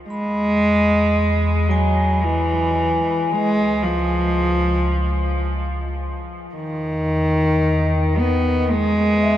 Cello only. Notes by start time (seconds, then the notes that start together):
0.08 G#3
1.68 F#3
2.24 E3
3.31 G#3
3.83 F3
6.55 D#3
8.18 B3
8.70 G#3